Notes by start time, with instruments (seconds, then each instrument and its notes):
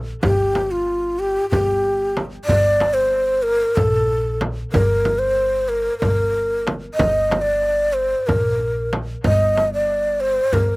Already playing: upright bass A#1
0.23 upright bass G1, ney G4, frame drum, darbuka dum
0.55 darbuka tek, frame drum
0.71 ney F4
1.19 ney G4
1.50 upright bass G1, ney G4, darbuka dum, frame drum
2.17 darbuka tek, frame drum
2.45 ney D5, darbuka dum
2.49 upright bass G1, frame drum
2.80 darbuka tek, frame drum
2.94 ney C5
3.43 ney A#4
3.76 upright bass A#1, ney A4, frame drum, darbuka dum
4.41 darbuka tek, frame drum
4.73 upright bass G1, ney A#4, frame drum, darbuka dum
5.05 frame drum
5.19 ney C5
5.69 ney A#4, darbuka ka
5.98 ney A#4, frame drum
6.03 upright bass G1, darbuka dum
6.35 darbuka ka
6.67 darbuka tek, frame drum
6.94 ney D#5
6.99 upright bass G1, darbuka dum, frame drum
7.31 darbuka tek, frame drum
7.41 ney D5
7.93 ney C5
8.27 upright bass A#1, ney A#4, darbuka dum, frame drum
8.93 darbuka tek, frame drum
9.24 upright bass G1, ney D#5, frame drum, darbuka dum
9.57 darbuka tek, frame drum
9.74 ney D5
10.21 ney C5
10.52 upright bass G1, ney A#4, darbuka dum, frame drum